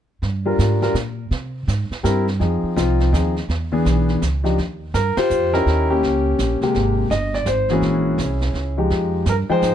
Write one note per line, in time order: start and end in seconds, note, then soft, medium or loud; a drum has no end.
0.22 0.57 G2 medium
0.22 brush sweep soft
0.22 snare soft
0.45 0.79 G3 medium
0.45 0.80 D4 medium
0.45 0.80 F4 soft
0.45 0.80 A#4 medium
0.59 0.94 G#2 medium
0.59 snare soft
0.59 hi-hat pedal medium
0.82 0.94 G3 medium
0.82 0.94 D4 medium
0.82 0.94 F4 medium
0.82 0.94 A#4 medium
0.82 snare soft
0.94 1.30 A#2 medium
0.94 snare soft
0.94 hi-hat pedal soft
1.31 1.66 C3 medium
1.31 brush sweep soft
1.31 snare soft
1.68 1.89 G#2 medium
1.68 snare medium
1.68 hi-hat pedal soft
1.90 muted upright bass stroke soft
1.90 snare soft
2.03 2.39 G2 medium
2.03 2.24 G3 medium
2.03 2.25 C4 medium
2.03 2.25 E4 medium
2.03 2.25 A#4 medium
2.03 snare medium
2.03 hi-hat pedal medium
2.27 snare soft
2.39 2.62 F2 medium
2.39 2.75 F3 soft
2.39 2.75 C4 soft
2.39 2.75 D#4 soft
2.39 2.75 G#4 soft
2.39 brush sweep soft
2.39 snare soft
2.63 muted upright bass stroke soft
2.76 3.12 C2 medium
2.76 3.11 F3 soft
2.76 3.11 C4 soft
2.76 3.11 D#4 soft
2.76 3.12 F4 medium
2.76 snare medium
2.76 hi-hat pedal soft
3.00 snare soft
3.12 3.48 D#2 medium
3.12 3.34 F3 soft
3.12 3.33 C4 soft
3.12 3.34 D#4 soft
3.12 3.34 G#4 medium
3.12 snare medium
3.12 hi-hat pedal medium
3.36 snare soft
3.49 3.84 E2 medium
3.49 brush sweep soft
3.49 snare soft
3.72 4.19 E3 medium
3.72 4.19 B3 medium
3.72 4.19 D4 medium
3.72 4.19 G#4 medium
3.85 4.20 B1 medium
3.85 snare soft
3.85 hi-hat pedal soft
4.08 snare soft
4.22 4.57 C#2 medium
4.22 snare medium
4.22 hi-hat pedal medium
4.44 4.56 F3 medium
4.44 4.56 D4 soft
4.44 4.56 D#4 medium
4.44 4.56 G4 medium
4.44 snare soft
4.58 4.93 D#2 medium
4.58 brush sweep soft
4.58 snare soft
4.94 5.15 G2 medium
4.94 5.15 A#4 medium
4.94 snare medium
4.94 hi-hat pedal medium
5.17 5.64 F4 medium
5.17 5.53 G4 medium
5.17 5.51 C5 medium
5.17 muted upright bass stroke soft
5.17 snare medium
5.17 ride medium
5.30 5.65 F2 medium
5.30 hi-hat pedal medium
5.53 5.90 C#4 medium
5.53 6.00 D#4 medium
5.53 6.00 E4 medium
5.53 5.89 G4 medium
5.53 5.90 A#4 medium
5.53 snare soft
5.66 6.01 D#2 medium
5.66 brush sweep soft
5.66 snare soft
5.90 6.58 A#3 medium
5.90 6.58 C#4 medium
5.90 6.58 G4 medium
6.03 6.38 C#2 medium
6.03 snare soft
6.39 6.60 A#1 medium
6.39 snare medium
6.39 hi-hat pedal medium
6.61 7.09 C3 medium
6.61 7.09 G#3 medium
6.61 7.09 A#3 medium
6.61 7.09 G4 medium
6.61 muted upright bass stroke soft
6.61 snare soft
6.74 7.10 G#1 medium
6.74 brush sweep soft
6.74 snare soft
7.10 7.45 G1 medium
7.10 7.34 D#5 medium
7.10 snare medium
7.10 hi-hat pedal medium
7.34 7.47 D5 medium
7.34 snare soft
7.46 7.81 G#1 medium
7.46 7.70 C5 medium
7.46 snare medium
7.46 hi-hat pedal medium
7.68 8.16 E3 medium
7.68 8.16 G#3 soft
7.68 8.17 A#3 medium
7.68 8.17 F#4 medium
7.68 8.74 G#4 medium
7.68 snare soft
7.73 8.75 C#4 medium
7.73 8.75 E4 medium
7.81 8.17 A#1 medium
7.81 brush sweep soft
7.81 snare soft
8.18 8.53 C2 medium
8.18 snare medium
8.18 hi-hat pedal soft
8.41 snare soft
8.54 8.89 C#2 medium
8.54 snare soft
8.78 9.24 F3 soft
8.78 9.24 G#3 medium
8.78 9.24 D#4 soft
8.78 9.24 G4 medium
8.90 9.25 F2 medium
8.90 brush sweep soft
8.90 snare soft
9.26 9.47 G2 medium
9.26 9.34 A#4 medium
9.26 snare medium
9.26 hi-hat pedal medium
9.49 9.75 F3 medium
9.49 9.75 G#3 medium
9.49 9.75 D#4 medium
9.49 9.75 G#4 medium
9.49 9.75 C5 loud
9.49 9.75 G5 medium
9.49 muted upright bass stroke soft
9.62 9.75 G#2 medium
9.62 snare medium
9.62 hi-hat pedal medium